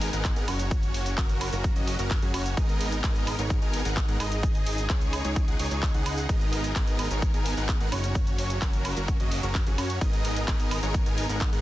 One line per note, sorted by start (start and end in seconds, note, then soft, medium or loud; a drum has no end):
0.00 0.11 G#1 loud
0.00 0.69 B2 medium
0.00 0.69 G#3 medium
0.00 0.10 B3 medium
0.00 0.10 D#4 medium
0.00 0.69 D#4 medium
0.00 0.10 G#4 medium
0.00 0.10 A#4 medium
0.00 0.69 A#4 medium
0.00 0.10 G#5 medium
0.00 open hi-hat loud
0.00 sub drop medium
0.13 0.34 G#1 loud
0.13 0.34 B3 medium
0.13 0.34 D#4 medium
0.13 0.34 G#4 medium
0.13 0.34 A#4 medium
0.13 0.34 F#5 medium
0.13 closed hi-hat soft
0.13 cabasa medium
0.25 kick loud
0.25 clap loud
0.25 closed hi-hat loud
0.25 cabasa medium
0.36 0.46 G#1 loud
0.36 0.45 B3 loud
0.36 0.45 D#4 medium
0.36 0.45 G#4 medium
0.36 0.45 A#4 medium
0.36 0.45 F#5 loud
0.36 closed hi-hat soft
0.36 cabasa soft
0.48 1.15 F#1 loud
0.48 1.15 C#4 medium
0.48 1.15 F#4 medium
0.48 1.15 C#5 medium
0.48 open hi-hat loud
0.48 high woodblock medium
0.59 closed hi-hat soft
0.59 cabasa medium
0.71 2.55 C#3 medium
0.71 2.55 F#3 medium
0.71 2.55 A#3 medium
0.71 2.55 F#4 medium
0.71 kick loud
0.71 closed hi-hat medium
0.71 cabasa medium
0.83 closed hi-hat soft
0.83 cabasa soft
0.94 open hi-hat loud
1.06 closed hi-hat soft
1.06 cabasa medium
1.18 1.50 F#1 loud
1.18 1.50 C#4 medium
1.18 1.50 F#4 medium
1.18 1.50 A#4 loud
1.18 kick loud
1.18 clap loud
1.18 closed hi-hat medium
1.18 cabasa medium
1.29 closed hi-hat soft
1.29 cabasa soft
1.41 open hi-hat loud
1.41 high woodblock medium
1.53 1.74 F#1 loud
1.53 1.73 C#4 medium
1.53 1.73 F#4 medium
1.53 1.73 A#4 loud
1.53 closed hi-hat soft
1.53 cabasa medium
1.64 kick loud
1.64 closed hi-hat medium
1.64 cabasa medium
1.76 1.97 F#1 loud
1.76 1.96 C#4 medium
1.76 1.96 F#4 medium
1.76 1.96 D#5 medium
1.76 closed hi-hat soft
1.76 cabasa soft
1.87 open hi-hat loud
1.99 2.20 F#1 loud
1.99 2.20 C#4 loud
1.99 2.20 F#4 medium
1.99 2.20 A#4 loud
1.99 closed hi-hat soft
1.99 cabasa medium
2.11 kick loud
2.11 clap loud
2.11 open hi-hat medium
2.11 cabasa medium
2.22 2.32 F#2 loud
2.22 2.32 C#4 medium
2.22 2.32 F#4 medium
2.22 2.32 G#4 loud
2.22 closed hi-hat soft
2.22 cabasa soft
2.34 2.55 F#1 loud
2.34 2.54 C#4 medium
2.34 2.54 F#4 medium
2.34 2.54 C#5 loud
2.34 open hi-hat loud
2.34 high woodblock medium
2.46 closed hi-hat soft
2.46 cabasa medium
2.57 3.01 G#1 loud
2.57 4.41 B2 medium
2.57 8.11 G#3 medium
2.57 3.01 B3 loud
2.57 4.41 D#4 medium
2.57 3.01 D#4 medium
2.57 3.01 G#4 medium
2.57 4.41 A#4 medium
2.57 3.01 A#4 medium
2.57 3.01 D#5 loud
2.57 kick loud
2.57 closed hi-hat medium
2.57 cabasa medium
2.69 closed hi-hat soft
2.69 cabasa soft
2.81 open hi-hat loud
2.92 closed hi-hat soft
2.92 cabasa medium
3.04 3.36 G#1 loud
3.04 3.36 B3 loud
3.04 3.36 A#4 medium
3.04 kick loud
3.04 clap loud
3.04 closed hi-hat medium
3.04 cabasa medium
3.16 closed hi-hat soft
3.16 cabasa soft
3.27 open hi-hat loud
3.27 high woodblock medium
3.39 3.60 G#1 loud
3.39 3.59 B3 medium
3.39 3.59 D#4 medium
3.39 3.59 G#4 medium
3.39 3.59 A#4 medium
3.39 3.59 C#5 medium
3.39 closed hi-hat soft
3.39 cabasa medium
3.50 kick loud
3.50 closed hi-hat medium
3.50 cabasa medium
3.62 3.83 G#1 loud
3.62 3.82 B3 medium
3.62 3.82 D#4 medium
3.62 3.82 G#4 medium
3.62 3.82 A#4 medium
3.62 3.82 G#5 medium
3.62 closed hi-hat soft
3.62 cabasa soft
3.73 open hi-hat loud
3.85 4.06 G#1 loud
3.85 4.06 B3 medium
3.85 4.06 D#4 medium
3.85 4.06 G#4 medium
3.85 4.06 A#4 medium
3.85 4.06 F#5 medium
3.85 closed hi-hat soft
3.85 cabasa medium
3.97 kick loud
3.97 clap loud
3.97 closed hi-hat medium
3.97 cabasa medium
4.08 4.18 G#2 loud
4.08 4.17 B3 medium
4.08 4.17 D#4 medium
4.08 4.17 G#4 medium
4.08 4.17 A#4 medium
4.08 4.17 F#5 loud
4.08 closed hi-hat soft
4.08 cabasa soft
4.20 4.88 G#1 loud
4.20 4.87 D#4 medium
4.20 4.87 G#4 medium
4.20 4.87 D#5 medium
4.20 open hi-hat loud
4.20 high woodblock medium
4.32 closed hi-hat soft
4.32 cabasa medium
4.43 6.27 C#3 medium
4.43 8.12 D#4 medium
4.43 6.28 G#4 medium
4.43 kick loud
4.43 closed hi-hat medium
4.43 cabasa medium
4.55 closed hi-hat soft
4.55 cabasa soft
4.66 open hi-hat loud
4.78 closed hi-hat soft
4.78 cabasa medium
4.90 5.22 C#2 loud
4.90 5.22 D#4 medium
4.90 5.22 G#4 medium
4.90 5.22 C#5 loud
4.90 kick loud
4.90 clap loud
4.90 closed hi-hat medium
4.90 cabasa medium
5.01 closed hi-hat soft
5.01 cabasa soft
5.13 open hi-hat loud
5.13 high woodblock medium
5.25 5.46 C#2 loud
5.25 5.45 D#4 medium
5.25 5.45 G#4 medium
5.25 5.45 C#5 loud
5.25 closed hi-hat soft
5.25 cabasa medium
5.36 kick loud
5.36 closed hi-hat medium
5.36 cabasa medium
5.48 5.57 C#2 loud
5.48 5.57 D#4 medium
5.48 5.57 G#4 medium
5.48 5.57 F#5 medium
5.48 closed hi-hat soft
5.48 cabasa soft
5.59 5.69 C#2 loud
5.59 5.69 D#4 medium
5.59 5.69 G#4 medium
5.59 5.69 C#5 medium
5.59 open hi-hat loud
5.71 5.92 C#2 loud
5.71 5.92 D#4 medium
5.71 5.92 G#4 medium
5.71 5.92 C#5 medium
5.71 closed hi-hat soft
5.71 cabasa medium
5.83 kick loud
5.83 clap loud
5.83 open hi-hat medium
5.83 cabasa medium
5.94 6.27 C#2 loud
5.94 6.27 D#4 loud
5.94 6.27 G#4 medium
5.94 6.27 F#5 loud
5.94 closed hi-hat soft
5.94 cabasa soft
6.06 open hi-hat loud
6.06 high woodblock medium
6.18 closed hi-hat soft
6.18 cabasa medium
6.29 6.73 G#1 medium
6.29 8.14 B2 medium
6.29 6.73 B3 loud
6.29 6.73 D#4 medium
6.29 6.73 G#4 medium
6.29 6.73 A#4 medium
6.29 8.14 A#4 medium
6.29 6.73 D#5 loud
6.29 kick loud
6.29 closed hi-hat medium
6.29 cabasa medium
6.41 closed hi-hat soft
6.41 cabasa soft
6.53 open hi-hat loud
6.64 closed hi-hat soft
6.64 cabasa medium
6.76 7.08 G#1 loud
6.76 7.08 B3 loud
6.76 7.08 G#4 medium
6.76 kick loud
6.76 clap loud
6.76 closed hi-hat medium
6.76 cabasa medium
6.87 closed hi-hat soft
6.87 cabasa soft
6.99 open hi-hat loud
6.99 high woodblock medium
7.11 7.32 G#1 loud
7.11 7.31 B3 medium
7.11 7.31 D#4 medium
7.11 7.31 G#4 medium
7.11 7.31 A#4 medium
7.11 7.31 C#5 medium
7.11 closed hi-hat soft
7.11 cabasa medium
7.22 kick loud
7.22 closed hi-hat medium
7.22 cabasa medium
7.34 7.55 G#1 loud
7.34 7.54 B3 medium
7.34 7.54 D#4 medium
7.34 7.54 G#4 medium
7.34 7.54 A#4 medium
7.34 7.54 G#5 medium
7.34 closed hi-hat soft
7.34 cabasa soft
7.46 open hi-hat loud
7.57 7.78 G#1 loud
7.57 7.78 B3 medium
7.57 7.78 D#4 medium
7.57 7.78 G#4 medium
7.57 7.78 A#4 medium
7.57 7.78 F#5 medium
7.57 closed hi-hat soft
7.57 cabasa medium
7.69 kick loud
7.69 clap loud
7.69 closed hi-hat medium
7.69 cabasa medium
7.80 7.90 G#1 loud
7.80 7.89 B3 loud
7.80 7.89 D#4 medium
7.80 7.89 G#4 medium
7.80 7.89 A#4 medium
7.80 7.89 F#5 loud
7.80 closed hi-hat soft
7.80 cabasa soft
7.92 8.60 F#1 loud
7.92 8.59 C#4 medium
7.92 8.59 F#4 medium
7.92 8.59 C#5 medium
7.92 open hi-hat loud
7.92 high woodblock medium
8.04 closed hi-hat soft
8.04 cabasa medium
8.15 9.99 C#3 medium
8.15 10.00 F#3 medium
8.15 9.99 A#3 medium
8.15 9.99 F#4 medium
8.15 kick loud
8.15 closed hi-hat medium
8.15 cabasa medium
8.27 closed hi-hat soft
8.27 cabasa soft
8.38 open hi-hat loud
8.50 closed hi-hat soft
8.50 cabasa medium
8.62 8.94 F#1 loud
8.62 8.94 C#4 medium
8.62 8.94 F#4 medium
8.62 8.94 A#4 loud
8.62 kick loud
8.62 clap loud
8.62 closed hi-hat medium
8.62 cabasa medium
8.73 closed hi-hat soft
8.73 cabasa soft
8.85 open hi-hat loud
8.85 high woodblock medium
8.97 9.18 F#1 loud
8.97 9.17 C#4 medium
8.97 9.17 F#4 medium
8.97 9.17 A#4 loud
8.97 closed hi-hat soft
8.97 cabasa medium
9.08 kick loud
9.08 closed hi-hat medium
9.08 cabasa medium
9.20 9.41 F#1 loud
9.20 9.40 C#4 medium
9.20 9.40 F#4 medium
9.20 9.40 D#5 medium
9.20 closed hi-hat soft
9.20 cabasa soft
9.31 open hi-hat loud
9.43 9.64 F#1 loud
9.43 9.64 C#4 loud
9.43 9.64 F#4 medium
9.43 9.64 A#4 loud
9.43 closed hi-hat soft
9.43 cabasa medium
9.55 kick loud
9.55 clap loud
9.55 open hi-hat medium
9.55 cabasa medium
9.66 9.76 F#1 loud
9.66 9.76 C#4 medium
9.66 9.76 F#4 medium
9.66 9.76 G#4 medium
9.66 closed hi-hat soft
9.66 cabasa soft
9.78 9.99 F#2 loud
9.78 9.99 C#4 loud
9.78 9.99 F#4 medium
9.78 9.99 C#5 loud
9.78 open hi-hat loud
9.78 high woodblock medium
9.90 closed hi-hat soft
9.90 cabasa medium
10.01 10.46 G#1 loud
10.01 11.61 B2 medium
10.01 11.61 G#3 medium
10.01 10.45 B3 loud
10.01 10.45 D#4 medium
10.01 11.61 D#4 medium
10.01 10.45 G#4 medium
10.01 10.45 A#4 medium
10.01 11.61 A#4 medium
10.01 10.45 D#5 loud
10.01 kick loud
10.01 closed hi-hat loud
10.01 cabasa medium
10.13 closed hi-hat soft
10.13 cabasa soft
10.25 open hi-hat loud
10.36 closed hi-hat soft
10.36 cabasa medium
10.48 10.80 G#1 loud
10.48 10.80 B3 loud
10.48 10.80 D#4 medium
10.48 kick loud
10.48 clap loud
10.48 closed hi-hat loud
10.48 cabasa medium
10.60 closed hi-hat soft
10.60 cabasa soft
10.71 open hi-hat loud
10.71 high woodblock medium
10.83 11.04 G#1 loud
10.83 11.03 B3 medium
10.83 11.03 D#4 medium
10.83 11.03 G#4 medium
10.83 11.03 A#4 medium
10.83 11.03 C#5 medium
10.83 closed hi-hat soft
10.83 cabasa medium
10.94 kick loud
10.94 closed hi-hat loud
10.94 cabasa medium
11.06 11.27 G#1 loud
11.06 11.27 B3 medium
11.06 11.27 D#4 medium
11.06 11.27 G#4 medium
11.06 11.27 A#4 medium
11.06 11.27 G#5 medium
11.06 closed hi-hat soft
11.06 cabasa soft
11.18 open hi-hat loud
11.29 11.50 G#1 loud
11.29 11.50 B3 medium
11.29 11.50 D#4 medium
11.29 11.50 G#4 medium
11.29 11.50 A#4 medium
11.29 11.50 F#5 medium
11.29 closed hi-hat soft
11.29 cabasa medium
11.41 kick loud
11.41 clap loud
11.41 closed hi-hat loud
11.41 cabasa medium
11.53 11.61 G#2 loud
11.53 11.61 B3 loud
11.53 11.61 D#4 medium
11.53 11.61 G#4 medium
11.53 11.61 A#4 medium
11.53 11.61 F#5 loud
11.53 closed hi-hat soft
11.53 cabasa soft